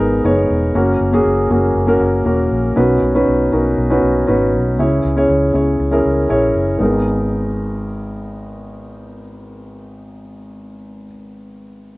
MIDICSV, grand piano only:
0, 0, Header, 1, 2, 480
1, 0, Start_track
1, 0, Key_signature, 5, "minor"
1, 0, Tempo, 504626
1, 709, Time_signature, 4, 2, 24, 8
1, 11392, End_track
2, 0, Start_track
2, 0, Title_t, "Grand piano"
2, 0, Program_c, 0, 0
2, 0, Control_c, 0, 64, 127
2, 0, Note_on_c, 0, 44, 59
2, 0, Note_on_c, 0, 59, 67
2, 0, Note_on_c, 0, 63, 63
2, 0, Note_on_c, 0, 68, 62
2, 0, Note_on_c, 0, 70, 88
2, 198, Note_off_c, 0, 59, 0
2, 200, Note_off_c, 0, 63, 0
2, 201, Note_off_c, 0, 68, 0
2, 202, Note_off_c, 0, 70, 0
2, 232, Note_on_c, 0, 59, 68
2, 236, Note_on_c, 0, 63, 63
2, 237, Note_on_c, 0, 68, 59
2, 242, Note_on_c, 0, 73, 73
2, 664, Note_off_c, 0, 59, 0
2, 666, Note_off_c, 0, 63, 0
2, 667, Note_off_c, 0, 68, 0
2, 669, Note_off_c, 0, 73, 0
2, 712, Note_on_c, 0, 58, 70
2, 715, Note_on_c, 0, 61, 68
2, 716, Note_on_c, 0, 66, 64
2, 719, Control_c, 0, 64, 0
2, 720, Note_off_c, 0, 44, 0
2, 721, Note_on_c, 0, 70, 75
2, 858, Control_c, 0, 64, 127
2, 1036, Note_off_c, 0, 58, 0
2, 1037, Note_off_c, 0, 61, 0
2, 1037, Note_off_c, 0, 66, 0
2, 1040, Note_off_c, 0, 70, 0
2, 1069, Note_on_c, 0, 58, 66
2, 1074, Note_on_c, 0, 61, 63
2, 1080, Note_on_c, 0, 66, 62
2, 1082, Note_on_c, 0, 68, 85
2, 1394, Note_off_c, 0, 58, 0
2, 1396, Note_off_c, 0, 61, 0
2, 1399, Note_off_c, 0, 66, 0
2, 1400, Note_off_c, 0, 68, 0
2, 1431, Note_on_c, 0, 58, 62
2, 1435, Note_on_c, 0, 66, 55
2, 1436, Note_on_c, 0, 61, 57
2, 1441, Note_on_c, 0, 68, 68
2, 1755, Note_off_c, 0, 58, 0
2, 1757, Note_off_c, 0, 61, 0
2, 1757, Note_off_c, 0, 66, 0
2, 1760, Note_off_c, 0, 68, 0
2, 1778, Note_on_c, 0, 58, 68
2, 1785, Note_on_c, 0, 61, 68
2, 1788, Note_on_c, 0, 66, 70
2, 1791, Note_on_c, 0, 70, 81
2, 2108, Note_off_c, 0, 58, 0
2, 2112, Note_off_c, 0, 61, 0
2, 2113, Note_off_c, 0, 66, 0
2, 2115, Note_off_c, 0, 70, 0
2, 2141, Note_on_c, 0, 58, 70
2, 2143, Note_on_c, 0, 61, 56
2, 2149, Note_on_c, 0, 66, 57
2, 2150, Note_on_c, 0, 70, 72
2, 2578, Note_off_c, 0, 58, 0
2, 2579, Note_off_c, 0, 61, 0
2, 2582, Note_off_c, 0, 66, 0
2, 2583, Note_off_c, 0, 70, 0
2, 2624, Note_on_c, 0, 61, 66
2, 2626, Note_on_c, 0, 63, 57
2, 2630, Note_on_c, 0, 47, 62
2, 2631, Note_on_c, 0, 66, 60
2, 2636, Note_on_c, 0, 71, 79
2, 2641, Control_c, 0, 64, 0
2, 2804, Control_c, 0, 64, 127
2, 2951, Note_off_c, 0, 61, 0
2, 2952, Note_off_c, 0, 63, 0
2, 2954, Note_off_c, 0, 66, 0
2, 2957, Note_off_c, 0, 71, 0
2, 2995, Note_on_c, 0, 61, 68
2, 2999, Note_on_c, 0, 63, 57
2, 3002, Note_on_c, 0, 66, 60
2, 3003, Note_on_c, 0, 71, 74
2, 3310, Note_off_c, 0, 47, 0
2, 3316, Note_off_c, 0, 61, 0
2, 3318, Note_off_c, 0, 63, 0
2, 3320, Note_off_c, 0, 66, 0
2, 3320, Note_off_c, 0, 71, 0
2, 3350, Note_on_c, 0, 61, 63
2, 3353, Note_on_c, 0, 63, 62
2, 3358, Note_on_c, 0, 66, 53
2, 3358, Note_on_c, 0, 70, 63
2, 3674, Note_off_c, 0, 61, 0
2, 3675, Note_off_c, 0, 63, 0
2, 3678, Note_off_c, 0, 66, 0
2, 3678, Note_off_c, 0, 70, 0
2, 3713, Note_on_c, 0, 61, 70
2, 3715, Note_on_c, 0, 63, 67
2, 3723, Note_on_c, 0, 66, 67
2, 3724, Note_on_c, 0, 71, 72
2, 4035, Note_off_c, 0, 61, 0
2, 4036, Note_off_c, 0, 63, 0
2, 4040, Note_off_c, 0, 66, 0
2, 4041, Note_off_c, 0, 71, 0
2, 4064, Note_on_c, 0, 61, 72
2, 4071, Note_on_c, 0, 63, 60
2, 4072, Note_on_c, 0, 66, 63
2, 4075, Note_on_c, 0, 71, 72
2, 4499, Note_off_c, 0, 61, 0
2, 4503, Note_off_c, 0, 63, 0
2, 4503, Note_off_c, 0, 66, 0
2, 4505, Note_off_c, 0, 71, 0
2, 4555, Note_on_c, 0, 61, 63
2, 4557, Control_c, 0, 64, 0
2, 4559, Note_on_c, 0, 64, 62
2, 4561, Note_on_c, 0, 68, 56
2, 4562, Note_on_c, 0, 49, 57
2, 4566, Note_on_c, 0, 73, 69
2, 4751, Control_c, 0, 64, 127
2, 4876, Note_off_c, 0, 61, 0
2, 4878, Note_off_c, 0, 64, 0
2, 4879, Note_off_c, 0, 68, 0
2, 4881, Note_off_c, 0, 73, 0
2, 4912, Note_on_c, 0, 61, 66
2, 4918, Note_on_c, 0, 64, 56
2, 4919, Note_on_c, 0, 68, 59
2, 4924, Note_on_c, 0, 73, 75
2, 5234, Note_off_c, 0, 61, 0
2, 5236, Note_off_c, 0, 49, 0
2, 5237, Note_off_c, 0, 64, 0
2, 5238, Note_off_c, 0, 68, 0
2, 5240, Note_off_c, 0, 73, 0
2, 5265, Note_on_c, 0, 61, 54
2, 5268, Note_on_c, 0, 64, 51
2, 5277, Note_on_c, 0, 68, 51
2, 5281, Note_on_c, 0, 73, 63
2, 5591, Note_off_c, 0, 61, 0
2, 5592, Note_off_c, 0, 64, 0
2, 5597, Note_off_c, 0, 68, 0
2, 5599, Note_off_c, 0, 73, 0
2, 5626, Note_on_c, 0, 61, 64
2, 5631, Note_on_c, 0, 64, 60
2, 5632, Note_on_c, 0, 68, 63
2, 5637, Note_on_c, 0, 70, 78
2, 5951, Note_off_c, 0, 61, 0
2, 5954, Note_off_c, 0, 64, 0
2, 5955, Note_off_c, 0, 68, 0
2, 5957, Note_off_c, 0, 70, 0
2, 5984, Note_on_c, 0, 61, 65
2, 5987, Note_on_c, 0, 64, 61
2, 5992, Note_on_c, 0, 68, 56
2, 5994, Note_on_c, 0, 73, 73
2, 6419, Note_off_c, 0, 61, 0
2, 6420, Note_off_c, 0, 64, 0
2, 6423, Note_off_c, 0, 68, 0
2, 6424, Note_off_c, 0, 73, 0
2, 6450, Note_on_c, 0, 59, 61
2, 6461, Note_on_c, 0, 63, 56
2, 6472, Note_on_c, 0, 32, 60
2, 6477, Note_on_c, 0, 68, 59
2, 6478, Control_c, 0, 64, 0
2, 6494, Note_on_c, 0, 70, 63
2, 6618, Control_c, 0, 64, 127
2, 10499, Note_off_c, 0, 59, 0
2, 10510, Note_off_c, 0, 63, 0
2, 10521, Note_off_c, 0, 32, 0
2, 10526, Note_off_c, 0, 68, 0
2, 10543, Note_off_c, 0, 70, 0
2, 11392, End_track
0, 0, End_of_file